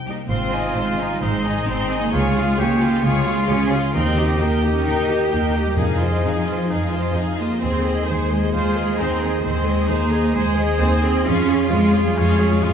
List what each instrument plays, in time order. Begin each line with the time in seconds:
Already playing: harp C3 C4 D#4 G4
0.07 cello section C2 A#3, viola section D#4, violin section G4
0.29 double bass section G#1, harp G#2, french horn section G#3 D#4, cello section C4, viola section C4, cor anglais F4, violin section C5 C6
0.45 harp C5
0.52 viola section D#4, violin section D#5 G#5
0.61 harp C4
0.76 double bass section G#1, cello section G#3, viola section C4, violin section C5 C6
0.92 harp D#3
0.98 viola section D#4, violin section D#5 G#5
1.11 cello section G3
1.21 double bass section G#1, harp D#3, cello section G#3, viola section C4, cor anglais D#4, violin section C5 C6
1.44 viola section D#4, violin section D#5 G#5
1.52 harp C4
1.66 double bass section G#1, cello section C4, viola section C4, violin section C5 C6
1.82 harp D#3
1.90 viola section D#4, violin section D#5 G#5
1.98 cello section A#3, harp D#4
2.11 double bass section C#2, harp C#3, cello section G#3, french horn section F4, cor anglais F4, viola section G#4, violin section C#5 G#5
2.34 viola section F4, violin section G#4 F5
2.43 harp C#4
2.58 double bass section C#2, cello section A#3, cor anglais G4, viola section G#4, violin section C#5 G#5
2.73 harp G#3
2.81 viola section F4, violin section G#4 F5
2.89 harp G#4
3.04 double bass section C#2, harp G#3, cello section G#3, cor anglais F4, viola section G#4, violin section C#5 G#5
3.19 harp G#4
3.27 viola section F4, violin section G#4 F5
3.34 harp C#4
3.48 double bass section C#2, cello section C#4, harp G#4, viola section G#4, violin section C#5 G#5
3.63 harp G#3
3.71 viola section F4, violin section G#4 F5
3.78 harp G#4
3.94 double bass section D#2, harp D#3, cello section C4, cor anglais D#4, french horn section D#4 G4, viola section D#4, violin section A#4 G5
4.10 harp A#4
4.17 violin section G4 D#5, viola section G4
4.25 harp D#4
4.39 double bass section D#2, cello section A#3, viola section D#4, cor anglais G4, harp A#4, violin section A#4 G5
4.55 harp A#3
4.62 violin section G4 D#5, viola section G4
4.70 cello section C#4, harp A#4
4.84 double bass section D#2, harp A#3, cello section D#4, viola section D#4, violin section A#4 G5
4.99 harp A#4
5.08 viola section G4, violin section G4 D#5
5.15 harp D#4
5.29 double bass section D#2, cello section A#3, viola section D#4, violin section A#4 G5, harp A#4
5.46 harp A#3
5.53 viola section G4, violin section G4 D#5
5.62 cello section G3, harp A#4
5.76 timpani F2, double bass section F2, cello section F3, harp F3, viola section D#4, french horn section G#4, cor anglais G#4, violin section G#4 F5
5.99 viola section F4, violin section C5 D#5
6.09 harp D#4
6.22 double bass section F2, viola section D#4, harp G#4, violin section G#4 F5
6.39 harp G#3
6.45 viola section F4, violin section C5 D#5
6.54 harp G#4
6.68 double bass section F2, harp G#3, viola section D#4, violin section G#4 F5
6.86 viola section F4, harp G#4
6.94 violin section C5 D#5
7.01 harp D#4
7.15 double bass section F2, viola section D#4, harp G#4, violin section G#4 F5
7.31 harp G#3
7.37 cello section A#3, viola section F4, violin section C5 D#5
7.47 harp G#4
7.60 double bass section D#2, harp D#3, cello section C4, french horn section D#4 G#4, violin section G#4, viola section C5
7.64 violin section C5
7.78 harp G#4
7.82 viola section G#4, violin section C5
7.87 violin section D#5
8.06 double bass section D#2, cello section G#3, violin section G#4 C5, harp G#4, viola section C5
8.26 harp G#3, violin section C5
8.30 viola section G#4, violin section D#5
8.39 cello section G3, harp G#4
8.53 double bass section D#2, harp G#3, cello section G#3, cor anglais F4, violin section G#4 C5, viola section C5
8.69 harp G#4
8.75 viola section G#4, violin section C5 D#5
8.85 harp D#4
8.97 double bass section D#2, cello section C4, cor anglais D#4, violin section G#4 C5, harp G#4, viola section C5
9.16 harp G#3
9.22 viola section G#4, violin section C5 D#5
9.30 harp G#4
9.34 cello section A#3
9.41 double bass section D#2, harp D#3, cello section G#3, cor anglais C4, viola section C5, violin section C5
9.46 violin section G#4
9.61 harp D#4
9.65 viola section G#4, violin section C5 D#5
9.76 harp G#3
9.87 double bass section D#2, cello section A#3, cor anglais D#4, harp G#4, violin section G#4 C5, viola section C5
10.05 harp G#3
10.12 viola section G#4, violin section C5 D#5
10.21 harp G#4
10.35 double bass section D#2, harp G#3, cello section G#3, violin section G#4 C5, cor anglais G#4, viola section C5
10.51 harp G#4
10.57 viola section G#4, violin section C5 D#5
10.66 harp D#4
10.79 double bass section D#2, cello section C4, harp G#4, violin section G#4 C5, viola section C5
10.97 harp G#3
11.02 cello section C4, viola section G#4, violin section C5 D#5
11.24 double bass section F2, harp F3, cello section C#4, french horn section F4 G#4, viola section F4, cor anglais F4, violin section G#4 F5
11.42 harp G#4
11.47 violin section F4 C#5, viola section G#4
11.57 harp C#4
11.69 double bass section F2, cello section G#3, viola section F4, harp G#4, violin section F5
11.75 violin section G#4
11.87 harp G#3
11.93 violin section F4 C#5, viola section G#4
12.02 cello section G3, harp G#4
12.15 double bass section F2, harp F3, cello section G#3, cor anglais C#4, viola section F4, violin section F5
12.20 violin section G#4
12.33 harp C#4
12.38 violin section F4 C#5, viola section G#4
12.48 harp G#3
12.62 double bass section F2, viola section F4, cor anglais F4, harp G#4, violin section G#4 F5